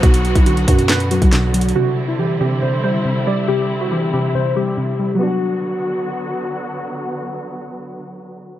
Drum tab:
HH |x--x--x--x--x--x--x--x--x--x--x--x--x-----x-x-x-|------------------------------------------------|------------------------------------------------|------------------------------------------------|
CP |------------------------x-----------x-----------|------------------------------------------------|------------------------------------------------|------------------------------------------------|
SD |------------------------o-----------o-----------|------------------------------------------------|------------------------------------------------|------------------------------------------------|
BD |o--------o--------o--------------o--------------|------------------------------------------------|------------------------------------------------|------------------------------------------------|

HH |------------------------------------------------|
CP |------------------------------------------------|
SD |------------------------------------------------|
BD |------------------------------------------------|